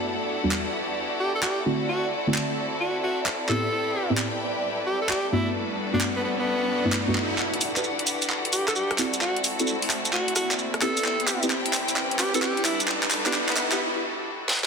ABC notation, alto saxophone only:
X:1
M:4/4
L:1/16
Q:"Swing 16ths" 1/4=131
K:Em
V:1 name="Alto saxophone"
z8 z2 G A G z3 | F z6 z F z F z3 A2- | A4 z6 G A G z E z | z3 D z B, B, B,6 z3 |
z8 z2 G A G z3 | F z6 z F z F z3 A2- | A4 z6 G A G z E z | z3 D z B, B, B, z8 |]